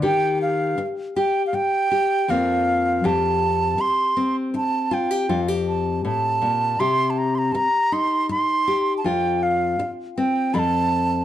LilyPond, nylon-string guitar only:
\new Staff \with { instrumentName = "Nylon-string guitar" } { \time 3/4 \key f \mixolydian \tempo 4 = 80 << { g'4. g'4 g'8 | <f bes c' f'>4 g'4. c'8~ | c'8 f'16 g'16 f'16 g'4.~ g'16 | g'4. ees'4 g'8 |
f'4. c'8 a'4 | } \\ { ees4 r2 | f,4 f,4 r4 | r4 f,4 a,8 bes,8 | c4 r2 |
f,4 r4 f,4 | } >> }